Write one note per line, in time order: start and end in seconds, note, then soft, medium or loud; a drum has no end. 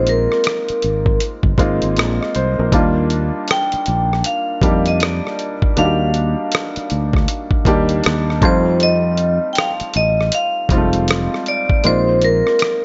0.00 0.27 A#1 medium
0.00 0.87 G#3 medium
0.00 0.87 A#3 medium
0.00 0.88 C4 medium
0.00 0.88 D#4 medium
0.00 0.88 F4 medium
0.07 1.18 A#4 medium
0.07 closed hi-hat medium
0.32 cross-stick soft
0.44 cross-stick loud
0.44 closed hi-hat medium
0.69 muted fingered electric bass stroke soft
0.69 closed hi-hat soft
0.82 1.18 G#1 medium
0.82 closed hi-hat medium
1.06 kick medium
1.20 closed hi-hat medium
1.43 1.57 G1 medium
1.43 kick medium
1.58 1.80 G#1 medium
1.58 2.49 G#3 medium
1.58 2.50 A#3 medium
1.58 2.50 C4 medium
1.58 2.50 D#4 medium
1.58 2.50 F4 medium
1.58 kick medium
1.58 closed hi-hat medium
1.82 1.98 G#1 medium
1.82 closed hi-hat medium
1.97 2.18 A#1 medium
1.97 cross-stick medium
1.97 closed hi-hat medium
2.21 2.34 D#5 medium
2.21 cross-stick soft
2.35 2.56 C2 medium
2.35 2.57 C5 medium
2.35 closed hi-hat soft
2.59 2.72 A#1 medium
2.59 2.94 A#4 medium
2.72 3.30 D#2 medium
2.72 3.91 G3 medium
2.72 3.91 A#3 medium
2.72 3.92 D4 medium
2.72 3.92 D#4 medium
2.72 3.92 F4 medium
2.72 kick medium
2.72 closed hi-hat medium
3.10 closed hi-hat medium
3.48 4.22 G5 medium
3.48 cross-stick loud
3.48 closed hi-hat medium
3.72 muted fingered electric bass stroke soft
3.72 closed hi-hat soft
3.86 4.22 A#1 medium
3.86 closed hi-hat medium
4.13 cross-stick soft
4.24 4.88 F5 medium
4.24 closed hi-hat medium
4.62 5.20 F2 medium
4.62 5.53 G3 medium
4.62 5.54 A#3 medium
4.62 5.54 D4 medium
4.62 5.54 D#4 medium
4.62 5.54 G4 medium
4.62 kick medium
4.62 closed hi-hat medium
4.86 5.02 D#5 medium
4.86 closed hi-hat soft
5.00 5.79 D5 medium
5.00 cross-stick medium
5.00 closed hi-hat medium
5.27 cross-stick soft
5.39 closed hi-hat soft
5.62 kick medium
5.76 6.34 D#2 medium
5.76 6.95 G3 medium
5.76 6.95 A#3 medium
5.76 6.95 D4 medium
5.76 6.96 D#4 medium
5.76 5.85 F#4 medium
5.76 8.01 F5 medium
5.76 closed hi-hat medium
5.85 6.99 G4 medium
6.14 closed hi-hat soft
6.52 cross-stick loud
6.52 closed hi-hat medium
6.76 muted fingered electric bass stroke soft
6.76 closed hi-hat soft
6.90 7.25 D2 medium
6.90 closed hi-hat medium
7.13 kick medium
7.13 cross-stick soft
7.28 closed hi-hat medium
7.51 kick medium
7.65 8.01 D#2 medium
7.65 8.41 G3 medium
7.65 8.42 A#3 medium
7.65 8.42 D4 medium
7.65 8.42 D#4 medium
7.65 8.43 G4 medium
7.65 kick medium
7.65 closed hi-hat medium
7.89 closed hi-hat soft
8.04 8.42 D#2 medium
8.04 cross-stick medium
8.04 closed hi-hat medium
8.30 cross-stick soft
8.42 9.37 F2 medium
8.42 9.65 G3 medium
8.42 9.66 A3 medium
8.42 9.66 C4 medium
8.42 9.66 D#4 medium
8.42 9.66 F4 medium
8.42 8.83 C5 medium
8.42 kick loud
8.42 closed hi-hat soft
8.80 9.48 D#5 medium
8.80 closed hi-hat medium
9.17 closed hi-hat medium
9.53 9.57 G5 medium
9.53 closed hi-hat medium
9.58 9.96 F5 medium
9.58 cross-stick loud
9.80 muted fingered electric bass stroke soft
9.80 closed hi-hat soft
9.94 10.29 A1 medium
9.94 10.34 D#5 medium
9.94 closed hi-hat medium
10.21 cross-stick soft
10.32 11.50 F5 loud
10.32 closed hi-hat medium
10.69 11.27 F1 medium
10.69 11.61 G3 medium
10.69 10.78 G#3 medium
10.69 11.62 C4 medium
10.69 11.62 D#4 medium
10.69 11.62 F4 medium
10.69 kick medium
10.69 closed hi-hat medium
10.77 11.65 A3 medium
10.93 closed hi-hat soft
11.08 cross-stick medium
11.08 closed hi-hat medium
11.34 cross-stick soft
11.46 11.86 D5 medium
11.46 closed hi-hat soft
11.70 kick medium
11.84 12.42 A#1 medium
11.84 12.85 G#3 medium
11.84 12.85 A#3 medium
11.84 12.85 C4 medium
11.84 12.85 D#4 medium
11.84 12.85 F4 medium
11.84 12.24 C5 medium
11.84 closed hi-hat medium
12.22 12.85 A#4 medium
12.22 closed hi-hat medium
12.47 cross-stick soft
12.59 cross-stick medium
12.59 closed hi-hat medium